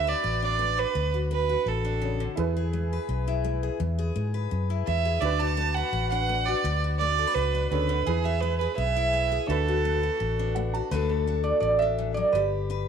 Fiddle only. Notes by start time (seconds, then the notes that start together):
Already playing: E5
0.09 D5
0.44 D5
0.79 B4
1.33 B4
1.68 A4
4.87 E5
5.22 D5
5.40 A5
5.75 F#5
6.10 F#5
6.46 D5
6.99 D5
7.34 B4
7.71 B4
8.07 G#4
8.24 E5
8.41 B4
8.59 B4
8.77 E5
9.49 A4